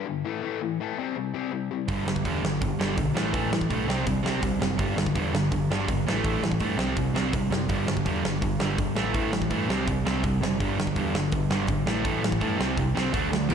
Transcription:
0.06 G2 D3
0.25 A2 E3 A3
0.43 A2 E3 A3
0.61 A2 E3
0.80 A2 E3 A3
0.98 C3 G3 C4
1.16 C3 G3
1.34 C3 G3 C4
1.52 C3 G3
1.71 C3 G3
1.88 G1 G2 D3 G3, kick, open hi-hat
2.05 G1 G2 D3, snare
2.16 kick
2.24 E2 G2 D3 G3, kick, open hi-hat
2.42 G1 G2 D3, snare
2.62 G1 G2 D3, kick, open hi-hat
2.78 G1 G2 D3 G3, snare
2.97 B1 G2 D3, kick, open hi-hat
3.14 A1 A2 E3 A3, snare
3.34 A1 A2 E3 A3, kick, open hi-hat
3.51 A1 A2 E3, snare
3.61 kick
3.70 B1 A2 E3 A3, kick, open hi-hat
3.88 C2 C3 G3 C4, snare
4.06 C2 C3 G3, kick, open hi-hat
4.24 C2 C3 G3 C4, snare
4.42 C2 C3 G3, kick, open hi-hat
4.60 F#1 C3 G3, snare
4.79 G1 G2 D3 G3, kick, open hi-hat
4.96 G1 G2 D3, snare
5.06 kick
5.15 E2 G2 D3 G3, kick, open hi-hat
5.33 G1 G2 D3, snare
5.51 G1 G2 D3, kick, open hi-hat
5.69 G1 G2 D3 G3, snare
5.88 G#1 G2 D3, kick, open hi-hat
6.05 A1 A2 E3 A3, snare
6.24 A1 A2 E3 A3, kick, open hi-hat
6.42 A1 A2 E3, snare
6.52 kick
6.60 G2 A2 E3 A3, kick, open hi-hat
6.77 C2 C3 G3 C4, snare
6.96 C2 C3 G3, kick, open hi-hat
7.14 C2 C3 G3 C4, snare
7.32 C2 C3 G3, kick, open hi-hat
7.51 F#1 C3 G3, snare
7.69 G1 G2 D3 G3, kick, open hi-hat
7.87 G1 G2 D3, snare
7.97 kick
8.05 E2 G2 D3 G3, kick, open hi-hat
8.24 G1 G2 D3, snare
8.42 G1 G2 D3, kick, open hi-hat
8.60 G1 G2 D3 G3, snare
8.77 G1 G2 D3, kick, open hi-hat
8.95 A1 A2 E3 A3, snare
9.14 A1 A2 E3 A3, kick, open hi-hat
9.32 A1 A2 E3, snare
9.42 kick
9.49 G2 A2 E3 A3, kick, open hi-hat
9.68 C2 C3 G3 C4, snare
9.87 C2 C3 G3, kick, open hi-hat
10.05 C2 C3 G3 C4, snare
10.23 C2 C3 G3, kick, open hi-hat
10.41 F#1 C3 G3, snare
10.60 G1 G2 D3 G3, kick, open hi-hat
10.78 G1 G2 D3, snare
10.87 kick
10.96 E2 G2 D3 G3, kick, open hi-hat
11.14 G1 G2 D3, snare
11.32 G1 G2 D3, kick, open hi-hat
11.50 G1 G2 D3 G3, snare
11.67 G#1 G2 D3, kick, open hi-hat
11.86 A1 A2 E3 A3, snare
12.05 A1 A2 E3 A3, kick, open hi-hat
12.22 A1 A2 E3, snare
12.32 kick
12.41 G2 A2 E3 A3, kick, open hi-hat
12.59 C2 C3 G3 C4, snare
12.77 C2 C3 G3, kick, open hi-hat
12.95 C2 C3 G3 C4, snare
13.13 D2 D3 A3 D4, kick, open hi-hat
13.31 D2 D3 A3, snare
13.49 E1 E2 B2 E3, kick, crash

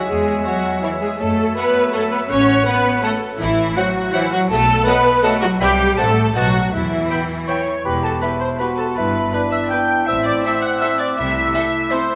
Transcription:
Already playing: G#3 C#5 E5
0.08 E2 G#3 G#4 G#5
0.46 F#3 F#4 C#5 F#5
0.82 E3 E4 C#5 E5
1.01 G#3 G#4 G#5
1.19 F#2 F#3 A3 A4 C#5 E5 A5
1.55 B3 B4 C#5 E5 F#5 B5
1.93 A3 A4 C#5 E5 F#5 A5
2.10 B3 B4 B5
2.28 A1 C#4 C#5 F#5 C#6
2.65 B3 B4 C#5 F#5 B5
3.02 A3 A4 C#5 F#5 A5
3.39 A1 E3 E4 E5
3.77 F#3 F#4 C5 F#5
4.13 E3 F#3 E4 C5 E5 F#5
4.31 F#3 F#4 F#5
4.49 B1 A3 A4 A5
4.86 F#3 B3 B4 D#5 F#5 B5
5.23 F#3 A3 A4 D#5 F#5 A5
5.41 F#3 F#4 F#5
5.60 C2 G3 G4 C5 E5 G5 B5
5.97 A1 A3 C4 A4 C5 F#5 A5
6.34 B1 F#3 B3 F#4 D#5 F#5 A5
6.72 E2 E3 E4 E5
7.10 B3 E5 G5 B5
7.47 B3 C#5 E5 G5 B5 C#6
7.85 E1 E2 B3 G4 B4 B5
8.04 A4 A5
8.21 B3 E4 G4 B4 B5
8.40 C5 C6
8.59 B3 F#4 G4 B4 B5
8.77 A4 A5
8.96 G1 G2 E4 B4 B5
9.32 B3 D4 E4 B4 B5
9.52 E5 E6
9.64 A6
9.70 B3 E4 B4 G5 G6
10.07 A1 A2 C4 E5 E6
10.26 D5 D6
10.43 C4 E4 A4 E5 E6
10.61 F#5 F#6
10.80 C4 E4 A4 E5 E6
10.98 D5 D6
11.17 C2 C3 A3 E4 E5 E6
11.53 C4 E4 A4 E5 E6
11.90 C4 E4 A4 C5 C6

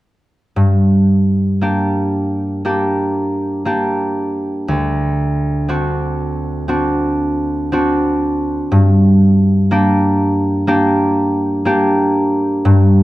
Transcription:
0.56 G2
1.61 A#3 D4 G4
2.65 A#3 D4 G4
3.65 A#3 D4 G4
4.68 D2
5.69 C4 D4 F#4
6.68 C4 D4 F#4
7.72 C4 D4 F#4
8.72 G2
9.71 A#3 D4 G4
10.67 A#3 D4 G4
11.65 A#3 D4 G4
12.65 G2

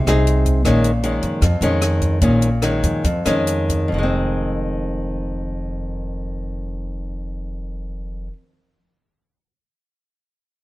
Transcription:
Already playing: C3
0.07 C2 C4 D#4 G#4, cross-stick, closed hi-hat
0.27 closed hi-hat
0.46 kick, closed hi-hat
0.65 A#1 A#2 D#3 G#3 C#4, kick, cross-stick, closed hi-hat
0.84 closed hi-hat
1.03 D#3 G#3 C#4, closed hi-hat
1.22 F2, closed hi-hat
1.42 F2, kick, cross-stick, closed hi-hat
1.61 F2 D#3 G#3 C#4, closed hi-hat
1.82 cross-stick, closed hi-hat
2.02 kick, closed hi-hat
2.21 A#1 A#2 D#3 G#3 C#4, kick, closed hi-hat
2.42 closed hi-hat
2.62 D#3 G#3 C#4, cross-stick, closed hi-hat
2.83 F2, kick, closed hi-hat
3.04 F2, kick, closed hi-hat
3.26 F2 D#3 G#3 C#4, cross-stick, closed hi-hat
3.47 closed hi-hat
3.70 kick, closed hi-hat
3.88 F1 F2
3.94 D#3
3.98 G#3
4.03 C4

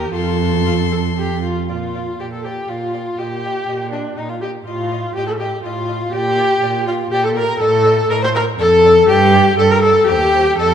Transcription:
Already playing: D#2 G4 A#4
0.12 F2 F4 A4 C6
0.66 F4
0.92 A4
1.18 G4
1.43 F4
1.69 A#2 F4 D5
1.95 D5
2.20 A#2 G4 D5
2.33 A4
2.45 G4 D5
2.69 A#2 F4 D5
2.94 D5
3.18 A#2 G4 D#5
3.45 D#5
3.68 A#2 D#5
3.92 D4 D#5
4.17 A#2 D#4 D#5
4.29 F4
4.41 G4 D#5
4.66 A2 F4 D#5
4.92 D#5
5.15 A2 G4 D#5
5.26 A4
5.39 G4 D#5
5.64 A2 F4 D#5
5.89 D#5
6.13 A#2 G4 D5
6.38 D5
6.61 A#2 D5
6.86 F4 D5
7.11 A#2 G4 D5
7.24 A4
7.36 A#4 D5
7.60 A2 A4 D#5
7.85 D#5
8.09 A2 A#4 D#5
8.22 C5
8.34 A#4 D#5
8.59 F2 A4 D5
8.85 D5
9.08 G2 G4 D5
9.35 D5
9.58 G2 A4 D5
9.71 A#4
9.83 A4 D5
10.07 D#2 G4 C5
10.34 C5
10.58 F2 A4 D#5

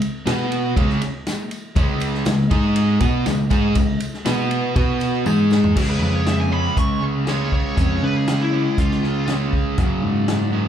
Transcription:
0.02 ride, tambourine
0.26 B2 B3 F#4 B4, snare, ride, tambourine
0.52 ride, tambourine
0.76 C#2 C#3 G#3 C#4, kick, ride
0.89 snare
1.01 snare, ride, tambourine
1.26 snare, ride, tambourine
1.51 ride, tambourine
1.76 C#2 C#3 G#3 C#4, kick, ride, tambourine
2.00 ride, tambourine
2.14 snare
2.25 C#2 C#3 G#3, snare, ride, tambourine
2.51 G#2 G#3 D#4 G#4, kick, ride, tambourine
2.76 ride
3.00 B2 B3 F#4 B4, kick, ride, tambourine
3.26 C#2 C#3 G#3, snare, ride, tambourine
3.50 G#2 G#3 D#4 G#4, kick, ride, tambourine
3.75 C#2 C#3 G#3, kick, ride, tambourine
4.00 ride, tambourine
4.13 snare
4.25 B2 B3 F#4 B4, snare, ride, tambourine
4.51 ride, tambourine
4.76 B2 B3 F#4 B4, kick, ride
5.00 ride, tambourine
5.26 G#2 G#3 D#4 G#4, high tom, tambourine
5.50 snare, tambourine
5.64 floor tom
5.76 C#2 C#3 G#3 C#4 G#4, kick, crash
5.90 B4
6.02 F2
6.16 C#5
6.26 E5, snare, closed hi-hat
6.40 G#5
6.51 C#3 G#3 C#4 B5
6.77 C#2 C#6, kick, closed hi-hat
7.00 G#3 C#4
7.04 C#3
7.27 C#3 G#3 C#4 C#5, snare, closed hi-hat
7.52 C#5, kick
7.77 F2 C#3 G#3 C#4, kick, closed hi-hat
8.03 C#3 B4
8.16 G#4
8.27 snare, closed hi-hat
8.42 E4
8.52 C#3 G#3 C#4
8.78 C#2 F4, kick, closed hi-hat
8.91 snare
9.02 C#3 G#3 C#4, snare
9.27 C#3 G#3 C#4, snare, closed hi-hat
9.53 kick
9.77 F#2 C#3 F#3, kick, closed hi-hat
10.04 G#2
10.28 snare, closed hi-hat
10.52 F#2 C#3 F#3

